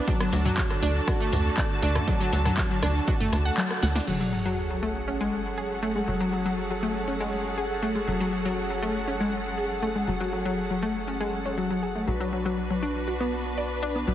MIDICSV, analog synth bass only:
0, 0, Header, 1, 2, 480
1, 0, Start_track
1, 0, Key_signature, 3, "minor"
1, 0, Tempo, 500000
1, 73, Time_signature, 4, 2, 24, 8
1, 13579, End_track
2, 0, Start_track
2, 0, Title_t, "Analog synth bass"
2, 0, Program_c, 0, 38
2, 313, Note_on_c, 0, 38, 99
2, 483, Note_off_c, 0, 38, 0
2, 793, Note_on_c, 0, 38, 81
2, 963, Note_off_c, 0, 38, 0
2, 1273, Note_on_c, 0, 38, 89
2, 1443, Note_off_c, 0, 38, 0
2, 1753, Note_on_c, 0, 38, 94
2, 1922, Note_off_c, 0, 38, 0
2, 2233, Note_on_c, 0, 38, 100
2, 2403, Note_off_c, 0, 38, 0
2, 2713, Note_on_c, 0, 38, 77
2, 2882, Note_off_c, 0, 38, 0
2, 3193, Note_on_c, 0, 38, 90
2, 3363, Note_off_c, 0, 38, 0
2, 3673, Note_on_c, 0, 38, 89
2, 3843, Note_off_c, 0, 38, 0
2, 3913, Note_on_c, 0, 30, 84
2, 5810, Note_off_c, 0, 30, 0
2, 5833, Note_on_c, 0, 30, 85
2, 7730, Note_off_c, 0, 30, 0
2, 7752, Note_on_c, 0, 30, 88
2, 9649, Note_off_c, 0, 30, 0
2, 9673, Note_on_c, 0, 30, 84
2, 11570, Note_off_c, 0, 30, 0
2, 11593, Note_on_c, 0, 35, 85
2, 13490, Note_off_c, 0, 35, 0
2, 13513, Note_on_c, 0, 35, 85
2, 13579, Note_off_c, 0, 35, 0
2, 13579, End_track
0, 0, End_of_file